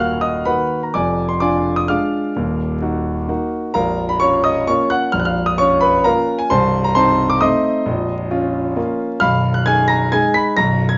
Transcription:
grand piano
Already playing: D#1 D#2 A#3 F#4 F5 G#5 F6 F#6 G#6
0.21 D#5 D#6
0.45 D#3 A#3 F#4 B4 F#5 B5
0.83 A#5
0.94 F1 F2 D5 G#5 D6
1.29 C6
1.40 D4 F4 D5 G#5 D6
1.76 D#6
1.88 G#3 D4 F4 F5 D6 F6
2.36 D#1 D#2
2.82 D#4 F#4
3.28 A#3 D#4 F#4
3.74 A#0 A#1 A#4 F5 A#5
4.09 B5
4.20 C#4 F4 C#5 C#6
4.44 D#5 D#6
4.67 A#3 C#4 F4 C#5 C#6
4.90 F#5 F#6
5.12 A#0 A#1 F6
5.20 F#6
5.25 F5 F6
5.46 D#6
5.58 C#4 F4 C#5 C#6
5.81 B4 B5
6.04 A#3 C#4 F4 A#4 F5 A#5
6.39 G#5
6.50 C1 C2 C5 A5 C6
6.84 A#5
6.95 C4 D#4 C5 A5 C6
7.30 D6
7.41 A3 C4 D#4 D#5 C6 D#6
7.86 A#0 A#1
8.31 C#4 F4
8.76 A#3 C#4 F4
9.20 B0 B1 F5 B5 F6
9.54 F#6
9.66 D#4 G#4 G#5 G#6
9.88 A#5 A#6
10.12 G#3 D#4 G#4 G#5 G#6
10.34 B5 B6
10.57 B0 B1 A#5 A#6
10.89 G#6

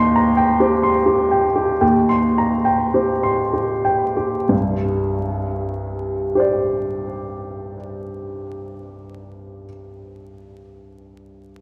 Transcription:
upright piano
Already playing: D#2 G5 C6
0.16 A#5
0.37 G5
0.60 C4 G4
0.83 C6
1.06 G4
1.31 G5
1.56 G4
1.81 D#2 G5
2.09 C6
2.38 A#5
2.65 G5
2.94 C4 G4
3.23 C6
3.53 G4
3.85 G5
4.17 G4
4.49 C2 G2
6.35 G4 C5
6.40 D5

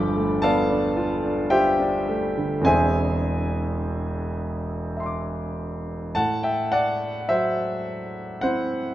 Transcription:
grand piano
Already playing: G1 G2 D3 F3 D5 G5 B5 D6
0.16 A3
0.42 B3 A4 D5 F5 A5
0.70 D4
0.97 F4
1.24 D4
1.50 F4 G4 C5 E5 G5
1.79 D4
2.09 A3
2.38 D3
2.61 E2 E3 C4 G#5
2.65 E1 D4 G#4 C5 E5
4.97 E5 C6
5.03 C6 D6
6.15 A2 F#5 A5
6.43 E5 G5
6.72 D5 F#5
7.29 F#3 C5 E5
8.41 C4 E4 C5 F#5

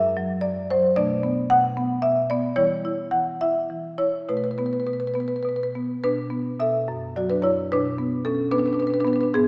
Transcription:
marimba
Already playing: F#2 E3 F#3 D4 E5
0.17 F#3
0.41 F#2 D5
0.70 F#3 C5
0.96 B2 A3 D4 D5
1.23 B3
1.50 B2 F#5
1.77 B3
2.02 B2 E5
2.30 B3 D5
2.56 E3 G3 E4 C#5
2.85 E4
3.11 E3 F#5
3.41 E4 E5
3.70 E3
3.98 E4 C#5
4.29 B2 A3 E4 B4
4.37 B4
4.44 B4
4.51 B4
4.58 B3 B4
4.66 B4
4.73 B4
4.80 B4
4.87 B2 B4
4.93 B4
5.00 B4
5.07 B4
5.14 B3 B4
5.20 B4
5.28 B4
5.36 B4
5.43 B2 B4
5.49 B4
5.56 B4
5.63 B4
5.75 B3
6.04 B2 D4 B4
6.30 B3
6.60 B2 A4 E5
6.88 F#2
7.16 F#3 F#4 D5
7.30 D4 B4
7.42 F#2 E4 C#5
7.72 B2 D4 B4
7.98 B3
8.25 B2 C#4 A4
8.51 B3 D4 B4
8.58 D4 B4
8.66 D4 B4
8.73 D4 B4
8.79 B2 D4 B4
8.87 D4 B4
8.94 B4
9.00 D4 B4
9.05 B3 D4 B4
9.13 D4 B4
9.21 D4 B4
9.34 G#2 B3 G#4

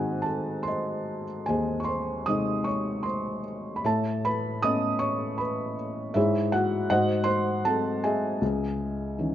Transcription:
felt piano
Already playing: G#2 D#3 C4 D#4 F#4 G#4 C5 D#5 F#5 G#5
0.22 A4 A5
0.63 C6
0.67 C5 D#5
1.46 D#2 G#4 C5 D#5 G#5
1.80 C#6
1.84 C6
1.89 C5
2.26 C3 G#3 D#4 D#5 D#6
2.64 C#5 C#6
3.03 C5 C6
3.76 B5
3.84 A2 A4 C#5 E5 A5
4.25 B4 B5
4.62 A3 B3 C#4 D#5 D#6
4.99 C#5 C#6
5.38 B4 B5
6.14 G#2 E4 G#4 C#5 E5
6.52 F#4 F#5
6.90 G#2 F#4 C5 D#5 F#5
7.24 C5 C6
7.65 F#3 G#3 C4 A4 A5
8.04 G#4 D#5 E5 G#5
8.41 C#2
9.19 D#3 E3 C#4

